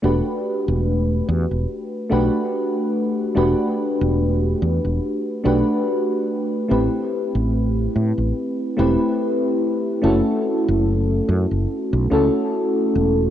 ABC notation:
X:1
M:4/4
L:1/16
Q:"Swing 16ths" 1/4=72
K:Em
V:1 name="FM electric piano"
[A,DFGB]8- [A,DFGB]2 [A,DFGB]6 | [A,DFGB]8- [A,DFGB]2 [A,DFGB]6 | [A,CEGB]8- [A,CEGB]2 [A,CEGB]6 | [A,^CEFA]8- [A,CEFA]2 [A,CEFA]6 |]
V:2 name="Fretless electric bass" clef=bass
E,,, z2 E,,,3 E,, E,,, z2 B,,, z4 z | E,,, z2 E,,,3 E,, E,,, z2 B,,, z4 z | A,,, z2 A,,,3 A,, A,,, z2 E,,, z4 z | F,,, z2 F,,,3 F,, F,,, z B,,, ^C,, z3 E,,, z |]